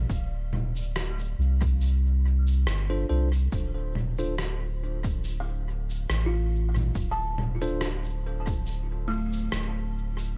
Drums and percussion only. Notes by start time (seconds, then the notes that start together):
0.10 kick, cabasa
0.53 low conga
0.76 cabasa
0.96 cross-stick, cabasa
1.19 cabasa
1.62 kick, cabasa
1.81 cabasa
2.47 cabasa
2.67 cross-stick, cabasa
3.33 cabasa
3.52 kick, cabasa
3.95 low conga
4.19 cabasa
4.38 cross-stick, cabasa
5.04 kick, cabasa
5.24 cabasa
5.90 cabasa
6.10 cross-stick, cabasa
6.76 low conga, cabasa
6.95 kick, cabasa
7.38 low conga
7.62 cabasa
7.81 cross-stick, cabasa
8.04 cabasa
8.47 kick, cabasa
8.66 cabasa
9.33 cabasa
9.52 cross-stick, cabasa
10.19 cabasa